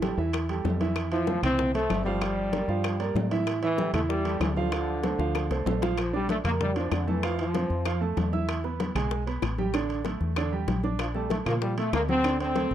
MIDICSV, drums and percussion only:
0, 0, Header, 1, 2, 480
1, 0, Start_track
1, 0, Tempo, 313480
1, 1470, Time_signature, 4, 2, 24, 8
1, 19514, End_track
2, 0, Start_track
2, 0, Title_t, "Drums"
2, 36, Note_on_c, 9, 60, 60
2, 36, Note_on_c, 9, 65, 70
2, 36, Note_on_c, 9, 66, 65
2, 40, Note_on_c, 9, 63, 94
2, 189, Note_off_c, 9, 60, 0
2, 189, Note_off_c, 9, 65, 0
2, 189, Note_off_c, 9, 66, 0
2, 193, Note_off_c, 9, 63, 0
2, 284, Note_on_c, 9, 60, 31
2, 437, Note_off_c, 9, 60, 0
2, 510, Note_on_c, 9, 65, 91
2, 516, Note_on_c, 9, 75, 74
2, 523, Note_on_c, 9, 60, 73
2, 523, Note_on_c, 9, 63, 34
2, 663, Note_off_c, 9, 65, 0
2, 669, Note_off_c, 9, 75, 0
2, 676, Note_off_c, 9, 60, 0
2, 676, Note_off_c, 9, 63, 0
2, 754, Note_on_c, 9, 65, 68
2, 758, Note_on_c, 9, 60, 32
2, 758, Note_on_c, 9, 63, 33
2, 907, Note_off_c, 9, 65, 0
2, 911, Note_off_c, 9, 60, 0
2, 911, Note_off_c, 9, 63, 0
2, 993, Note_on_c, 9, 60, 33
2, 993, Note_on_c, 9, 61, 84
2, 997, Note_on_c, 9, 66, 73
2, 1001, Note_on_c, 9, 63, 88
2, 1146, Note_off_c, 9, 60, 0
2, 1146, Note_off_c, 9, 61, 0
2, 1150, Note_off_c, 9, 66, 0
2, 1154, Note_off_c, 9, 63, 0
2, 1233, Note_on_c, 9, 60, 36
2, 1236, Note_on_c, 9, 65, 67
2, 1241, Note_on_c, 9, 63, 83
2, 1386, Note_off_c, 9, 60, 0
2, 1389, Note_off_c, 9, 65, 0
2, 1394, Note_off_c, 9, 63, 0
2, 1466, Note_on_c, 9, 60, 68
2, 1468, Note_on_c, 9, 65, 90
2, 1474, Note_on_c, 9, 75, 71
2, 1477, Note_on_c, 9, 63, 34
2, 1620, Note_off_c, 9, 60, 0
2, 1621, Note_off_c, 9, 65, 0
2, 1627, Note_off_c, 9, 75, 0
2, 1630, Note_off_c, 9, 63, 0
2, 1709, Note_on_c, 9, 65, 67
2, 1717, Note_on_c, 9, 63, 31
2, 1862, Note_off_c, 9, 65, 0
2, 1870, Note_off_c, 9, 63, 0
2, 1948, Note_on_c, 9, 60, 59
2, 1954, Note_on_c, 9, 66, 54
2, 1956, Note_on_c, 9, 63, 98
2, 2101, Note_off_c, 9, 60, 0
2, 2107, Note_off_c, 9, 66, 0
2, 2109, Note_off_c, 9, 63, 0
2, 2189, Note_on_c, 9, 60, 32
2, 2194, Note_on_c, 9, 75, 65
2, 2198, Note_on_c, 9, 65, 106
2, 2200, Note_on_c, 9, 63, 33
2, 2200, Note_on_c, 9, 64, 82
2, 2343, Note_off_c, 9, 60, 0
2, 2347, Note_off_c, 9, 75, 0
2, 2351, Note_off_c, 9, 65, 0
2, 2353, Note_off_c, 9, 63, 0
2, 2353, Note_off_c, 9, 64, 0
2, 2433, Note_on_c, 9, 60, 75
2, 2438, Note_on_c, 9, 63, 34
2, 2438, Note_on_c, 9, 64, 72
2, 2586, Note_off_c, 9, 60, 0
2, 2591, Note_off_c, 9, 63, 0
2, 2591, Note_off_c, 9, 64, 0
2, 2671, Note_on_c, 9, 60, 33
2, 2681, Note_on_c, 9, 63, 35
2, 2681, Note_on_c, 9, 65, 71
2, 2824, Note_off_c, 9, 60, 0
2, 2834, Note_off_c, 9, 63, 0
2, 2834, Note_off_c, 9, 65, 0
2, 2907, Note_on_c, 9, 60, 30
2, 2907, Note_on_c, 9, 61, 79
2, 2911, Note_on_c, 9, 75, 71
2, 2913, Note_on_c, 9, 63, 85
2, 2914, Note_on_c, 9, 65, 76
2, 2914, Note_on_c, 9, 66, 76
2, 3061, Note_off_c, 9, 60, 0
2, 3061, Note_off_c, 9, 61, 0
2, 3065, Note_off_c, 9, 75, 0
2, 3066, Note_off_c, 9, 63, 0
2, 3067, Note_off_c, 9, 65, 0
2, 3067, Note_off_c, 9, 66, 0
2, 3153, Note_on_c, 9, 60, 32
2, 3306, Note_off_c, 9, 60, 0
2, 3391, Note_on_c, 9, 65, 97
2, 3393, Note_on_c, 9, 75, 76
2, 3396, Note_on_c, 9, 60, 64
2, 3401, Note_on_c, 9, 63, 32
2, 3544, Note_off_c, 9, 65, 0
2, 3546, Note_off_c, 9, 75, 0
2, 3549, Note_off_c, 9, 60, 0
2, 3554, Note_off_c, 9, 63, 0
2, 3636, Note_on_c, 9, 63, 31
2, 3789, Note_off_c, 9, 63, 0
2, 3872, Note_on_c, 9, 63, 96
2, 3872, Note_on_c, 9, 65, 68
2, 3872, Note_on_c, 9, 66, 61
2, 3875, Note_on_c, 9, 60, 58
2, 4025, Note_off_c, 9, 63, 0
2, 4025, Note_off_c, 9, 65, 0
2, 4025, Note_off_c, 9, 66, 0
2, 4029, Note_off_c, 9, 60, 0
2, 4114, Note_on_c, 9, 60, 35
2, 4267, Note_off_c, 9, 60, 0
2, 4350, Note_on_c, 9, 63, 34
2, 4351, Note_on_c, 9, 65, 97
2, 4353, Note_on_c, 9, 75, 74
2, 4358, Note_on_c, 9, 60, 68
2, 4504, Note_off_c, 9, 63, 0
2, 4504, Note_off_c, 9, 65, 0
2, 4506, Note_off_c, 9, 75, 0
2, 4511, Note_off_c, 9, 60, 0
2, 4593, Note_on_c, 9, 65, 74
2, 4595, Note_on_c, 9, 63, 36
2, 4599, Note_on_c, 9, 60, 34
2, 4746, Note_off_c, 9, 65, 0
2, 4748, Note_off_c, 9, 63, 0
2, 4753, Note_off_c, 9, 60, 0
2, 4832, Note_on_c, 9, 63, 93
2, 4833, Note_on_c, 9, 66, 73
2, 4843, Note_on_c, 9, 60, 33
2, 4843, Note_on_c, 9, 61, 87
2, 4985, Note_off_c, 9, 63, 0
2, 4986, Note_off_c, 9, 66, 0
2, 4996, Note_off_c, 9, 60, 0
2, 4996, Note_off_c, 9, 61, 0
2, 5074, Note_on_c, 9, 65, 74
2, 5075, Note_on_c, 9, 60, 36
2, 5076, Note_on_c, 9, 63, 77
2, 5227, Note_off_c, 9, 65, 0
2, 5228, Note_off_c, 9, 60, 0
2, 5229, Note_off_c, 9, 63, 0
2, 5312, Note_on_c, 9, 75, 69
2, 5313, Note_on_c, 9, 60, 64
2, 5320, Note_on_c, 9, 63, 37
2, 5320, Note_on_c, 9, 65, 96
2, 5465, Note_off_c, 9, 75, 0
2, 5466, Note_off_c, 9, 60, 0
2, 5474, Note_off_c, 9, 63, 0
2, 5474, Note_off_c, 9, 65, 0
2, 5553, Note_on_c, 9, 65, 72
2, 5556, Note_on_c, 9, 63, 33
2, 5706, Note_off_c, 9, 65, 0
2, 5709, Note_off_c, 9, 63, 0
2, 5790, Note_on_c, 9, 60, 63
2, 5792, Note_on_c, 9, 66, 65
2, 5799, Note_on_c, 9, 63, 99
2, 5943, Note_off_c, 9, 60, 0
2, 5945, Note_off_c, 9, 66, 0
2, 5952, Note_off_c, 9, 63, 0
2, 6030, Note_on_c, 9, 65, 104
2, 6033, Note_on_c, 9, 60, 33
2, 6037, Note_on_c, 9, 75, 63
2, 6041, Note_on_c, 9, 63, 32
2, 6041, Note_on_c, 9, 64, 87
2, 6183, Note_off_c, 9, 65, 0
2, 6186, Note_off_c, 9, 60, 0
2, 6190, Note_off_c, 9, 75, 0
2, 6194, Note_off_c, 9, 63, 0
2, 6194, Note_off_c, 9, 64, 0
2, 6279, Note_on_c, 9, 60, 71
2, 6279, Note_on_c, 9, 63, 37
2, 6432, Note_off_c, 9, 60, 0
2, 6432, Note_off_c, 9, 63, 0
2, 6512, Note_on_c, 9, 65, 80
2, 6514, Note_on_c, 9, 60, 31
2, 6519, Note_on_c, 9, 63, 37
2, 6665, Note_off_c, 9, 65, 0
2, 6667, Note_off_c, 9, 60, 0
2, 6672, Note_off_c, 9, 63, 0
2, 6750, Note_on_c, 9, 65, 88
2, 6750, Note_on_c, 9, 66, 76
2, 6752, Note_on_c, 9, 60, 35
2, 6752, Note_on_c, 9, 61, 77
2, 6754, Note_on_c, 9, 63, 91
2, 6756, Note_on_c, 9, 75, 74
2, 6903, Note_off_c, 9, 65, 0
2, 6903, Note_off_c, 9, 66, 0
2, 6905, Note_off_c, 9, 60, 0
2, 6905, Note_off_c, 9, 61, 0
2, 6907, Note_off_c, 9, 63, 0
2, 6910, Note_off_c, 9, 75, 0
2, 6988, Note_on_c, 9, 60, 33
2, 6995, Note_on_c, 9, 63, 74
2, 7141, Note_off_c, 9, 60, 0
2, 7148, Note_off_c, 9, 63, 0
2, 7229, Note_on_c, 9, 60, 60
2, 7230, Note_on_c, 9, 65, 97
2, 7233, Note_on_c, 9, 75, 66
2, 7239, Note_on_c, 9, 63, 37
2, 7382, Note_off_c, 9, 60, 0
2, 7383, Note_off_c, 9, 65, 0
2, 7386, Note_off_c, 9, 75, 0
2, 7392, Note_off_c, 9, 63, 0
2, 7481, Note_on_c, 9, 63, 34
2, 7634, Note_off_c, 9, 63, 0
2, 7709, Note_on_c, 9, 65, 67
2, 7709, Note_on_c, 9, 66, 55
2, 7711, Note_on_c, 9, 60, 61
2, 7719, Note_on_c, 9, 63, 99
2, 7862, Note_off_c, 9, 65, 0
2, 7862, Note_off_c, 9, 66, 0
2, 7864, Note_off_c, 9, 60, 0
2, 7873, Note_off_c, 9, 63, 0
2, 7954, Note_on_c, 9, 60, 72
2, 8108, Note_off_c, 9, 60, 0
2, 8189, Note_on_c, 9, 65, 85
2, 8195, Note_on_c, 9, 75, 75
2, 8196, Note_on_c, 9, 60, 95
2, 8198, Note_on_c, 9, 63, 38
2, 8343, Note_off_c, 9, 65, 0
2, 8348, Note_off_c, 9, 75, 0
2, 8349, Note_off_c, 9, 60, 0
2, 8351, Note_off_c, 9, 63, 0
2, 8433, Note_on_c, 9, 65, 69
2, 8437, Note_on_c, 9, 60, 64
2, 8439, Note_on_c, 9, 63, 36
2, 8586, Note_off_c, 9, 65, 0
2, 8590, Note_off_c, 9, 60, 0
2, 8592, Note_off_c, 9, 63, 0
2, 8671, Note_on_c, 9, 66, 83
2, 8675, Note_on_c, 9, 63, 89
2, 8684, Note_on_c, 9, 61, 92
2, 8824, Note_off_c, 9, 66, 0
2, 8828, Note_off_c, 9, 63, 0
2, 8837, Note_off_c, 9, 61, 0
2, 8914, Note_on_c, 9, 65, 68
2, 8916, Note_on_c, 9, 63, 76
2, 8922, Note_on_c, 9, 61, 94
2, 9067, Note_off_c, 9, 65, 0
2, 9069, Note_off_c, 9, 63, 0
2, 9075, Note_off_c, 9, 61, 0
2, 9149, Note_on_c, 9, 65, 92
2, 9156, Note_on_c, 9, 75, 72
2, 9162, Note_on_c, 9, 60, 70
2, 9302, Note_off_c, 9, 65, 0
2, 9309, Note_off_c, 9, 75, 0
2, 9315, Note_off_c, 9, 60, 0
2, 9393, Note_on_c, 9, 63, 31
2, 9402, Note_on_c, 9, 60, 39
2, 9546, Note_off_c, 9, 63, 0
2, 9555, Note_off_c, 9, 60, 0
2, 9631, Note_on_c, 9, 63, 96
2, 9635, Note_on_c, 9, 65, 74
2, 9646, Note_on_c, 9, 60, 55
2, 9784, Note_off_c, 9, 63, 0
2, 9788, Note_off_c, 9, 65, 0
2, 9800, Note_off_c, 9, 60, 0
2, 9873, Note_on_c, 9, 64, 88
2, 9873, Note_on_c, 9, 75, 62
2, 9875, Note_on_c, 9, 65, 99
2, 9882, Note_on_c, 9, 60, 33
2, 10026, Note_off_c, 9, 64, 0
2, 10026, Note_off_c, 9, 75, 0
2, 10028, Note_off_c, 9, 65, 0
2, 10035, Note_off_c, 9, 60, 0
2, 10117, Note_on_c, 9, 60, 73
2, 10117, Note_on_c, 9, 63, 38
2, 10117, Note_on_c, 9, 64, 76
2, 10270, Note_off_c, 9, 60, 0
2, 10271, Note_off_c, 9, 63, 0
2, 10271, Note_off_c, 9, 64, 0
2, 10350, Note_on_c, 9, 65, 69
2, 10359, Note_on_c, 9, 63, 34
2, 10503, Note_off_c, 9, 65, 0
2, 10512, Note_off_c, 9, 63, 0
2, 10588, Note_on_c, 9, 65, 93
2, 10588, Note_on_c, 9, 66, 63
2, 10594, Note_on_c, 9, 60, 34
2, 10594, Note_on_c, 9, 61, 83
2, 10595, Note_on_c, 9, 75, 67
2, 10598, Note_on_c, 9, 63, 38
2, 10742, Note_off_c, 9, 65, 0
2, 10742, Note_off_c, 9, 66, 0
2, 10747, Note_off_c, 9, 60, 0
2, 10747, Note_off_c, 9, 61, 0
2, 10748, Note_off_c, 9, 75, 0
2, 10752, Note_off_c, 9, 63, 0
2, 10834, Note_on_c, 9, 60, 34
2, 10841, Note_on_c, 9, 63, 81
2, 10987, Note_off_c, 9, 60, 0
2, 10995, Note_off_c, 9, 63, 0
2, 11072, Note_on_c, 9, 75, 73
2, 11074, Note_on_c, 9, 60, 62
2, 11074, Note_on_c, 9, 65, 93
2, 11079, Note_on_c, 9, 63, 33
2, 11225, Note_off_c, 9, 75, 0
2, 11227, Note_off_c, 9, 60, 0
2, 11227, Note_off_c, 9, 65, 0
2, 11232, Note_off_c, 9, 63, 0
2, 11310, Note_on_c, 9, 60, 41
2, 11315, Note_on_c, 9, 65, 69
2, 11321, Note_on_c, 9, 63, 34
2, 11463, Note_off_c, 9, 60, 0
2, 11468, Note_off_c, 9, 65, 0
2, 11474, Note_off_c, 9, 63, 0
2, 11552, Note_on_c, 9, 60, 62
2, 11560, Note_on_c, 9, 63, 97
2, 11561, Note_on_c, 9, 65, 72
2, 11705, Note_off_c, 9, 60, 0
2, 11713, Note_off_c, 9, 63, 0
2, 11715, Note_off_c, 9, 65, 0
2, 11791, Note_on_c, 9, 60, 31
2, 11798, Note_on_c, 9, 63, 34
2, 11944, Note_off_c, 9, 60, 0
2, 11952, Note_off_c, 9, 63, 0
2, 12027, Note_on_c, 9, 60, 70
2, 12031, Note_on_c, 9, 75, 70
2, 12034, Note_on_c, 9, 65, 97
2, 12039, Note_on_c, 9, 63, 36
2, 12181, Note_off_c, 9, 60, 0
2, 12184, Note_off_c, 9, 75, 0
2, 12187, Note_off_c, 9, 65, 0
2, 12192, Note_off_c, 9, 63, 0
2, 12279, Note_on_c, 9, 63, 35
2, 12432, Note_off_c, 9, 63, 0
2, 12510, Note_on_c, 9, 60, 35
2, 12510, Note_on_c, 9, 61, 82
2, 12518, Note_on_c, 9, 63, 88
2, 12518, Note_on_c, 9, 65, 61
2, 12518, Note_on_c, 9, 66, 62
2, 12663, Note_off_c, 9, 60, 0
2, 12663, Note_off_c, 9, 61, 0
2, 12671, Note_off_c, 9, 63, 0
2, 12671, Note_off_c, 9, 65, 0
2, 12671, Note_off_c, 9, 66, 0
2, 12755, Note_on_c, 9, 60, 36
2, 12759, Note_on_c, 9, 63, 73
2, 12908, Note_off_c, 9, 60, 0
2, 12912, Note_off_c, 9, 63, 0
2, 12995, Note_on_c, 9, 60, 65
2, 12995, Note_on_c, 9, 65, 107
2, 12995, Note_on_c, 9, 75, 74
2, 13148, Note_off_c, 9, 60, 0
2, 13148, Note_off_c, 9, 65, 0
2, 13148, Note_off_c, 9, 75, 0
2, 13232, Note_on_c, 9, 60, 39
2, 13239, Note_on_c, 9, 63, 29
2, 13385, Note_off_c, 9, 60, 0
2, 13392, Note_off_c, 9, 63, 0
2, 13474, Note_on_c, 9, 65, 66
2, 13475, Note_on_c, 9, 60, 60
2, 13481, Note_on_c, 9, 63, 106
2, 13627, Note_off_c, 9, 65, 0
2, 13628, Note_off_c, 9, 60, 0
2, 13634, Note_off_c, 9, 63, 0
2, 13711, Note_on_c, 9, 60, 34
2, 13713, Note_on_c, 9, 75, 65
2, 13717, Note_on_c, 9, 65, 103
2, 13718, Note_on_c, 9, 64, 82
2, 13864, Note_off_c, 9, 60, 0
2, 13866, Note_off_c, 9, 75, 0
2, 13870, Note_off_c, 9, 65, 0
2, 13871, Note_off_c, 9, 64, 0
2, 13952, Note_on_c, 9, 60, 71
2, 13959, Note_on_c, 9, 63, 35
2, 14105, Note_off_c, 9, 60, 0
2, 14112, Note_off_c, 9, 63, 0
2, 14200, Note_on_c, 9, 63, 35
2, 14201, Note_on_c, 9, 65, 71
2, 14353, Note_off_c, 9, 63, 0
2, 14354, Note_off_c, 9, 65, 0
2, 14429, Note_on_c, 9, 60, 31
2, 14429, Note_on_c, 9, 61, 90
2, 14433, Note_on_c, 9, 75, 67
2, 14438, Note_on_c, 9, 63, 37
2, 14438, Note_on_c, 9, 65, 89
2, 14582, Note_off_c, 9, 60, 0
2, 14582, Note_off_c, 9, 61, 0
2, 14586, Note_off_c, 9, 75, 0
2, 14591, Note_off_c, 9, 63, 0
2, 14591, Note_off_c, 9, 65, 0
2, 14675, Note_on_c, 9, 60, 37
2, 14677, Note_on_c, 9, 63, 84
2, 14828, Note_off_c, 9, 60, 0
2, 14830, Note_off_c, 9, 63, 0
2, 14910, Note_on_c, 9, 60, 62
2, 14912, Note_on_c, 9, 75, 75
2, 14923, Note_on_c, 9, 65, 97
2, 15063, Note_off_c, 9, 60, 0
2, 15065, Note_off_c, 9, 75, 0
2, 15076, Note_off_c, 9, 65, 0
2, 15145, Note_on_c, 9, 60, 39
2, 15157, Note_on_c, 9, 63, 30
2, 15159, Note_on_c, 9, 65, 66
2, 15298, Note_off_c, 9, 60, 0
2, 15310, Note_off_c, 9, 63, 0
2, 15312, Note_off_c, 9, 65, 0
2, 15383, Note_on_c, 9, 60, 63
2, 15396, Note_on_c, 9, 63, 90
2, 15399, Note_on_c, 9, 65, 68
2, 15536, Note_off_c, 9, 60, 0
2, 15549, Note_off_c, 9, 63, 0
2, 15552, Note_off_c, 9, 65, 0
2, 15627, Note_on_c, 9, 60, 30
2, 15637, Note_on_c, 9, 63, 36
2, 15780, Note_off_c, 9, 60, 0
2, 15790, Note_off_c, 9, 63, 0
2, 15869, Note_on_c, 9, 60, 71
2, 15872, Note_on_c, 9, 65, 98
2, 15875, Note_on_c, 9, 75, 72
2, 15878, Note_on_c, 9, 63, 35
2, 16022, Note_off_c, 9, 60, 0
2, 16025, Note_off_c, 9, 65, 0
2, 16028, Note_off_c, 9, 75, 0
2, 16031, Note_off_c, 9, 63, 0
2, 16122, Note_on_c, 9, 63, 38
2, 16275, Note_off_c, 9, 63, 0
2, 16352, Note_on_c, 9, 60, 37
2, 16352, Note_on_c, 9, 61, 88
2, 16352, Note_on_c, 9, 65, 73
2, 16360, Note_on_c, 9, 63, 89
2, 16505, Note_off_c, 9, 60, 0
2, 16505, Note_off_c, 9, 61, 0
2, 16505, Note_off_c, 9, 65, 0
2, 16513, Note_off_c, 9, 63, 0
2, 16591, Note_on_c, 9, 60, 35
2, 16596, Note_on_c, 9, 63, 76
2, 16744, Note_off_c, 9, 60, 0
2, 16749, Note_off_c, 9, 63, 0
2, 16830, Note_on_c, 9, 60, 64
2, 16834, Note_on_c, 9, 75, 69
2, 16837, Note_on_c, 9, 65, 100
2, 16983, Note_off_c, 9, 60, 0
2, 16987, Note_off_c, 9, 75, 0
2, 16990, Note_off_c, 9, 65, 0
2, 17065, Note_on_c, 9, 60, 38
2, 17081, Note_on_c, 9, 63, 33
2, 17218, Note_off_c, 9, 60, 0
2, 17234, Note_off_c, 9, 63, 0
2, 17306, Note_on_c, 9, 60, 59
2, 17320, Note_on_c, 9, 63, 95
2, 17321, Note_on_c, 9, 65, 67
2, 17459, Note_off_c, 9, 60, 0
2, 17473, Note_off_c, 9, 63, 0
2, 17474, Note_off_c, 9, 65, 0
2, 17553, Note_on_c, 9, 75, 67
2, 17554, Note_on_c, 9, 65, 101
2, 17556, Note_on_c, 9, 60, 34
2, 17561, Note_on_c, 9, 64, 88
2, 17706, Note_off_c, 9, 75, 0
2, 17707, Note_off_c, 9, 65, 0
2, 17709, Note_off_c, 9, 60, 0
2, 17714, Note_off_c, 9, 64, 0
2, 17790, Note_on_c, 9, 60, 73
2, 17800, Note_on_c, 9, 63, 37
2, 17943, Note_off_c, 9, 60, 0
2, 17953, Note_off_c, 9, 63, 0
2, 18033, Note_on_c, 9, 65, 80
2, 18040, Note_on_c, 9, 63, 35
2, 18186, Note_off_c, 9, 65, 0
2, 18193, Note_off_c, 9, 63, 0
2, 18270, Note_on_c, 9, 60, 37
2, 18270, Note_on_c, 9, 61, 92
2, 18271, Note_on_c, 9, 75, 73
2, 18274, Note_on_c, 9, 63, 39
2, 18274, Note_on_c, 9, 65, 92
2, 18274, Note_on_c, 9, 66, 71
2, 18424, Note_off_c, 9, 60, 0
2, 18424, Note_off_c, 9, 61, 0
2, 18425, Note_off_c, 9, 75, 0
2, 18427, Note_off_c, 9, 63, 0
2, 18427, Note_off_c, 9, 65, 0
2, 18427, Note_off_c, 9, 66, 0
2, 18509, Note_on_c, 9, 60, 31
2, 18509, Note_on_c, 9, 63, 91
2, 18662, Note_off_c, 9, 60, 0
2, 18662, Note_off_c, 9, 63, 0
2, 18745, Note_on_c, 9, 60, 65
2, 18745, Note_on_c, 9, 75, 80
2, 18752, Note_on_c, 9, 63, 37
2, 18752, Note_on_c, 9, 65, 107
2, 18898, Note_off_c, 9, 60, 0
2, 18898, Note_off_c, 9, 75, 0
2, 18905, Note_off_c, 9, 63, 0
2, 18905, Note_off_c, 9, 65, 0
2, 18990, Note_on_c, 9, 60, 38
2, 18992, Note_on_c, 9, 63, 32
2, 18994, Note_on_c, 9, 65, 75
2, 19143, Note_off_c, 9, 60, 0
2, 19145, Note_off_c, 9, 63, 0
2, 19147, Note_off_c, 9, 65, 0
2, 19223, Note_on_c, 9, 60, 63
2, 19228, Note_on_c, 9, 63, 104
2, 19232, Note_on_c, 9, 65, 69
2, 19376, Note_off_c, 9, 60, 0
2, 19381, Note_off_c, 9, 63, 0
2, 19385, Note_off_c, 9, 65, 0
2, 19462, Note_on_c, 9, 60, 35
2, 19514, Note_off_c, 9, 60, 0
2, 19514, End_track
0, 0, End_of_file